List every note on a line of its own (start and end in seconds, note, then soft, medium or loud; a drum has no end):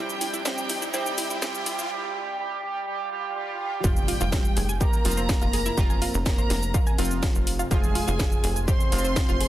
0.00 1.90 F2 medium
0.00 0.43 C3 medium
0.00 1.90 F3 medium
0.00 0.43 G3 medium
0.00 0.43 C4 medium
0.00 0.43 G4 loud
0.00 0.43 G5 loud
0.00 riser medium
0.09 shaker soft
0.21 0.27 E4 medium
0.21 open hi-hat loud
0.21 shaker medium
0.34 0.42 E4 loud
0.34 shaker soft
0.45 0.92 C3 medium
0.45 0.92 G3 medium
0.45 0.92 C4 medium
0.45 0.51 E4 loud
0.45 0.92 G4 loud
0.45 0.92 G5 loud
0.45 snare loud
0.45 shaker medium
0.58 shaker soft
0.69 0.75 E4 medium
0.69 open hi-hat loud
0.69 shaker medium
0.82 0.90 E4 loud
0.82 shaker soft
0.94 1.40 C3 medium
0.94 1.40 G3 medium
0.94 1.40 C4 loud
0.94 0.99 E4 loud
0.94 1.40 G4 loud
0.94 1.40 G5 loud
0.94 shaker medium
1.06 shaker soft
1.18 1.23 E4 medium
1.18 open hi-hat loud
1.18 shaker medium
1.30 1.39 E4 loud
1.30 shaker soft
1.42 1.89 C3 medium
1.42 1.89 G3 medium
1.42 1.89 C4 loud
1.42 1.48 E4 loud
1.42 1.89 G4 loud
1.42 1.89 G5 loud
1.42 snare loud
1.42 shaker medium
1.55 shaker soft
1.66 1.72 E4 medium
1.66 open hi-hat loud
1.66 shaker medium
1.79 1.87 E4 loud
1.79 shaker soft
1.90 2.13 G3 medium
1.90 2.13 G4 loud
2.15 2.37 G3 medium
2.15 2.37 G4 loud
2.39 2.61 G3 medium
2.39 2.61 G4 loud
2.63 2.85 G3 medium
2.63 2.85 G4 loud
2.87 3.10 G3 medium
2.87 3.10 G4 loud
2.87 swell medium
3.11 3.34 G3 medium
3.11 3.34 G4 loud
3.36 3.58 G3 medium
3.36 3.58 G4 loud
3.60 3.82 G3 medium
3.60 3.82 G4 loud
3.84 4.13 F1 loud
3.84 9.48 F2 medium
3.84 9.48 C3 medium
3.84 5.02 F3 medium
3.84 4.71 G3 medium
3.84 5.02 C4 medium
3.84 3.89 F4 loud
3.84 5.02 F4 loud
3.84 4.71 G4 loud
3.84 3.89 F5 medium
3.84 4.71 G5 loud
3.84 kick loud
3.84 impact medium
3.84 shaker medium
3.97 shaker soft
4.08 4.14 F4 medium
4.08 4.14 F5 medium
4.08 open hi-hat loud
4.08 shaker soft
4.21 4.49 F1 loud
4.21 4.29 F4 loud
4.21 4.29 F5 medium
4.21 shaker soft
4.32 4.41 F4 loud
4.32 4.41 F5 medium
4.32 kick loud
4.32 snare loud
4.32 shaker medium
4.45 shaker soft
4.57 4.85 F1 loud
4.57 4.68 G#4 medium
4.57 4.68 G#5 medium
4.57 open hi-hat loud
4.57 shaker soft
4.69 4.78 G#5 medium
4.69 4.78 G#6 medium
4.69 shaker soft
4.81 6.17 A#3 medium
4.81 4.86 G4 loud
4.81 6.17 A#4 loud
4.81 4.86 G5 medium
4.81 6.17 A#5 loud
4.81 kick loud
4.81 shaker medium
4.93 shaker soft
5.05 5.34 F1 medium
5.05 5.75 F3 medium
5.05 5.75 C4 medium
5.05 5.75 F4 loud
5.05 open hi-hat loud
5.05 shaker soft
5.11 shaker medium
5.17 5.26 C5 medium
5.17 5.26 C6 medium
5.17 shaker soft
5.29 5.40 F4 medium
5.29 5.40 F5 medium
5.29 kick loud
5.29 snare loud
5.29 shaker medium
5.42 5.70 F1 medium
5.42 5.50 F4 loud
5.42 5.50 F5 medium
5.42 shaker soft
5.53 5.65 G#4 medium
5.53 5.65 G#5 medium
5.53 open hi-hat loud
5.53 shaker soft
5.66 5.77 E4 loud
5.66 5.77 E5 medium
5.66 shaker soft
5.78 6.06 F1 loud
5.78 6.96 F3 medium
5.78 6.96 C4 medium
5.78 6.96 F4 loud
5.78 5.83 G4 loud
5.78 5.83 G5 medium
5.78 kick loud
5.78 shaker medium
5.90 6.01 G#5 medium
5.90 6.01 G#6 medium
5.90 shaker soft
6.02 6.14 F4 loud
6.02 6.14 F5 medium
6.02 open hi-hat loud
6.02 shaker soft
6.14 6.43 F1 loud
6.14 shaker soft
6.26 6.89 A#3 medium
6.26 6.38 F4 medium
6.26 6.89 A#4 loud
6.26 6.38 F5 medium
6.26 6.89 A#5 loud
6.26 kick loud
6.26 snare loud
6.26 shaker medium
6.38 6.50 C5 medium
6.38 6.50 C6 medium
6.38 shaker soft
6.50 6.79 F1 loud
6.50 snare medium
6.50 open hi-hat loud
6.50 shaker soft
6.63 shaker soft
6.74 6.80 F4 loud
6.74 6.80 F5 medium
6.74 kick loud
6.74 shaker medium
6.87 6.98 G#5 medium
6.87 6.98 G#6 medium
6.87 shaker soft
6.98 7.27 F1 medium
6.98 7.68 F3 medium
6.98 7.68 C4 medium
6.98 7.68 F4 loud
6.98 7.10 F4 loud
6.98 7.10 F5 medium
6.98 open hi-hat loud
6.98 shaker soft
7.05 shaker medium
7.11 shaker soft
7.23 7.35 F4 medium
7.23 7.35 F5 medium
7.23 kick loud
7.23 snare loud
7.23 shaker medium
7.35 7.64 F1 medium
7.35 shaker soft
7.47 open hi-hat loud
7.47 shaker soft
7.59 7.68 F4 medium
7.59 7.68 F5 medium
7.59 shaker soft
7.71 8.00 F1 loud
7.71 8.89 F3 medium
7.71 8.59 G#3 medium
7.71 8.89 C4 medium
7.71 8.89 F4 loud
7.71 7.77 F4 loud
7.71 8.59 G#4 loud
7.71 7.77 F5 medium
7.71 8.58 G#5 loud
7.71 kick loud
7.71 shaker medium
7.84 shaker soft
7.95 8.01 F4 medium
7.95 8.01 F5 medium
7.95 open hi-hat loud
7.95 shaker soft
8.08 8.36 F1 loud
8.08 8.16 F4 loud
8.08 8.16 F5 medium
8.08 shaker soft
8.19 8.29 F4 loud
8.19 8.29 F5 medium
8.19 kick loud
8.19 snare loud
8.19 shaker medium
8.32 shaker soft
8.44 8.72 F1 loud
8.44 8.56 G#4 medium
8.44 8.55 G#5 medium
8.44 open hi-hat loud
8.44 shaker soft
8.56 8.65 G#5 medium
8.56 8.65 G#6 medium
8.56 shaker soft
8.68 9.48 C4 medium
8.68 8.73 G4 loud
8.68 9.48 C5 loud
8.68 8.73 G5 medium
8.68 9.48 C6 loud
8.68 kick loud
8.68 shaker medium
8.80 shaker soft
8.92 9.21 F1 medium
8.92 9.48 F3 medium
8.92 9.48 C4 medium
8.92 9.48 F4 loud
8.92 open hi-hat loud
8.92 shaker soft
8.98 shaker medium
9.04 9.13 C5 medium
9.04 9.13 C6 medium
9.04 shaker soft
9.16 9.27 F4 medium
9.16 9.27 F5 medium
9.16 kick loud
9.16 snare loud
9.16 shaker medium
9.29 9.48 F1 medium
9.29 9.37 F4 loud
9.29 9.37 F5 medium
9.29 shaker soft
9.40 9.48 G#4 medium
9.40 9.48 G#5 medium
9.40 open hi-hat loud
9.40 shaker soft